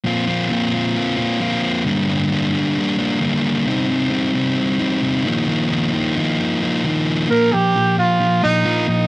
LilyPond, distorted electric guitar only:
\new Staff \with { instrumentName = "Distorted electric guitar" } { \time 4/4 \key bes \major \tempo 4 = 132 <bes, f bes c' f'>8 <bes c' f'>8 <bes, f bes c' f'>8 <bes c' f'>4 <bes c' f'>8 <f bes c' f'>4 | <g, d g bes d'>8 <g bes d'>8 <g, d g bes d'>8 <g bes d'>4 <g bes d'>8 <d g bes d'>4 | <c g c' ees'>8 <g c' ees'>8 <c g c' ees'>8 <g c' ees'>4 <g c' ees'>8 <c g c' ees'>8 <ees f bes ees'>8 | <ees f bes ees'>8 <f bes ees'>8 <ees f bes ees'>8 <f bes ees'>4 <f bes ees'>8 <ees f bes ees'>4 |
<bes, f bes>8 <bes, f>8 <bes, f>8 <bes, f>8 <bes, f>8 <bes, f>8 <bes, f bes>8 <bes, f>8 | }